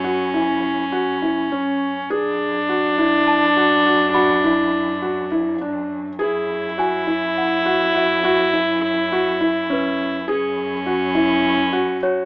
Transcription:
<<
  \new Staff \with { instrumentName = "Celesta" } { \time 7/8 \key e \mixolydian \tempo 4 = 103 r8 gis''4. r4. | r2 a''4. | b''4. r2 | r4 gis''4 fis''8 fis''8 e''8~ |
e''4 r4. b'4~ | b'8 r2 r8 cis''8 | }
  \new Staff \with { instrumentName = "Felt piano" } { \time 7/8 \key e \mixolydian fis'8 e'4 fis'8 e'8 cis'4 | gis'4 fis'8 e'4 fis'8 fis'8 | fis'8 e'4 fis'8 e'8 d'4 | gis'4 fis'8 e'4 fis'8 fis'8 |
fis'8 e'4 fis'8 e'8 cis'4 | gis'4 fis'8 e'4 fis'8 fis'8 | }
  \new Staff \with { instrumentName = "Viola" } { \time 7/8 \key e \mixolydian cis'2.~ cis'8 | d'2.~ d'8~ | d'2. r8 | e'2.~ e'8~ |
e'2.~ e'8 | cis'2.~ cis'8 | }
  \new Staff \with { instrumentName = "Cello" } { \clef bass \time 7/8 \key e \mixolydian fis,2.~ fis,8 | fis,2.~ fis,8~ | fis,2.~ fis,8 | fis,2.~ fis,8~ |
fis,2.~ fis,8 | fis,2.~ fis,8 | }
>>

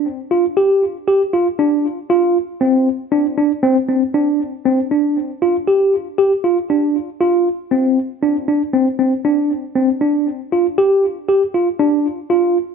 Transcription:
\new Staff \with { instrumentName = "Tine electric piano" } { \time 5/4 \key g \minor \tempo 4 = 118 r8 f'8 g'4 g'8 f'8 d'4 f'4 | c'4 d'8 d'8 c'8 c'8 d'4 c'8 d'8~ | d'8 f'8 g'4 g'8 f'8 d'4 f'4 | c'4 d'8 d'8 c'8 c'8 d'4 c'8 d'8~ |
d'8 f'8 g'4 g'8 f'8 d'4 f'4 | }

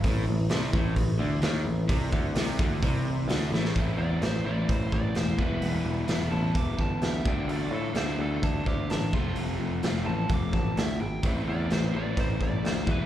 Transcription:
<<
  \new Staff \with { instrumentName = "Lead electric guitar" } { \time 4/4 \key a \minor \tempo 4 = 128 r1 | r1 | r8 d''8 c''8 d''8 c''8 d''8 c''8 b'8~ | b'8 r4 a''8 d'''8 a''8 e''8 g''8 |
d''8 a'8 c''8 a'8 d'8 g'8 d'8 f'8 | r4. a''8 d'''8 a''8 e''8 g''8 | r8 d''8 c''8 d''8 c''8 d''8 c''8 b'8 | }
  \new Staff \with { instrumentName = "Tonewheel organ" } { \time 4/4 \key a \minor <e a c' e'>1~ | <e a c' e'>1 | r1 | r1 |
r1 | r1 | r1 | }
  \new Staff \with { instrumentName = "Overdriven electric guitar" } { \clef bass \time 4/4 \key a \minor a,8 a,8 c8 a,8 a,8 d8 dis8 a,8 | c8 d8 c8 d8 c4 d8 a,8 | <a, e a c' e'>4. <a, e a c' e'>2 <e g b e'>8~ | <e g b e'>4 <e g b e'>2~ <e g b e'>8 <d a d' f'>8~ |
<d a d' f'>4 <d a d' f'>2~ <d a d' f'>8 <f a c' f'>8~ | <f a c' f'>4 <f a c' f'>2~ <f a c' f'>8 r8 | <a, e a c' e'>4. <a, e a c' e'>2 <e g b e'>8 | }
  \new Staff \with { instrumentName = "Picked electric bass" } { \clef bass \time 4/4 \key a \minor a,,8 a,,8 c,8 a,,8 a,,8 d,8 dis,8 a,,8 | c,8 d,8 c,8 d,8 c,4 d,8 a,,8 | a,,8 e,8 a,,8 a,,8 a,,8 a,,8 e,,8 e,,8 | e,,8 e,,8 e,,8 a,,8 r8 g,,8 d,8 d,8 |
d,8 a,8 d,8 d,8 d,8 d,8 a,,8 f,,8 | f,,8 f,,8 f,,8 a,,8 f,,8 a,,8 d,8 gis,,8 | a,,8 e,8 a,,8 a,,8 a,,8 a,,8 d,8 e,,8 | }
  \new DrumStaff \with { instrumentName = "Drums" } \drummode { \time 4/4 <hho bd>4 <hho sn>8 bd8 <hho bd>4 <hho sn>4 | <hho bd>8 bd8 <hho sn>8 bd8 <hho bd>4 <hho sn>8 sn16 sn16 | <hho bd>4 <hho sn>4 <hho bd>8 bd8 <hho sn>8 bd8 | hho4 <hho sn>4 <hho bd>8 bd8 <hho sn>8 bd8 |
hho4 <hho sn>4 <hho bd>8 bd8 <hho sn>8 bd8 | hho4 <hho sn>4 <hho bd>8 bd8 <hho sn>4 | <hho bd>4 <hho sn>4 <hho bd>8 bd8 <hho sn>8 bd8 | }
>>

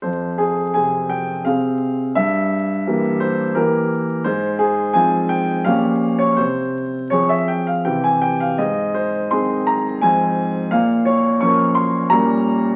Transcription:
<<
  \new Staff \with { instrumentName = "Grand piano" } { \time 3/4 \key f \minor \tempo 4 = 85 c''8 aes'8 aes''8 g''8 f''4 | e''4. c''8 bes'4 | c''8 aes'8 aes''8 g''8 f''8. des''16 | c''4 des''16 e''16 g''16 f''16 g''16 aes''16 g''16 f''16 |
ees''8 c''8 c'''8 bes''8 aes''4 | f''8 des''8 des'''8 c'''8 bes''4 | }
  \new Staff \with { instrumentName = "Grand piano" } { \time 3/4 \key f \minor f,4 <c c' aes'>4 <c c' aes'>4 | g,4 <e bes g'>4 <e bes g'>4 | aes,4 <f c' f'>4 <bes, f des' g'>4 | c4 <f c' aes'>4 <c e c' g'>4 |
aes,4 <ees c' aes'>4 <aes, f c' c''>4 | bes,4 <f des' bes'>4 <bes, g des' bes'>4 | }
>>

